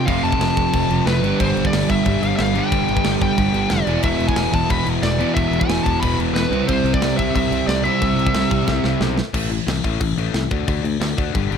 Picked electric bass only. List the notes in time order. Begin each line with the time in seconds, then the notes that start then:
0.08 F1
0.23 F1
0.39 F1
0.58 F1
0.74 F1
0.90 F1
1.06 F1
1.22 G1
1.40 G1
1.56 G1
1.73 G1
1.90 G1
2.06 G1
2.23 G1
2.40 G1
2.72 G1
2.89 G1
3.06 G1
3.21 G1
3.38 G1
3.55 G1
3.71 F1
3.87 E1
4.04 E1
4.20 E1
4.36 E1
4.54 E1
4.70 E1
4.86 E1
5.03 E1
5.36 E1
5.51 E1
5.68 E1
5.86 E1
6.03 E1
6.18 E1
6.33 E1
6.51 C2
6.69 C2
6.84 C2
7.01 C2
7.19 C2
7.36 C2
7.51 C2
7.67 C2
8.02 C2
8.16 C2
8.34 C2
8.51 C2
8.68 C2
8.84 C2
9.01 B1
9.34 A1
9.67 C2
9.85 A1
10.01 A1
10.16 A1
10.34 C2
10.51 D2
10.68 D2
10.83 D2
11.00 D2
11.18 D2
11.35 G1
11.51 G1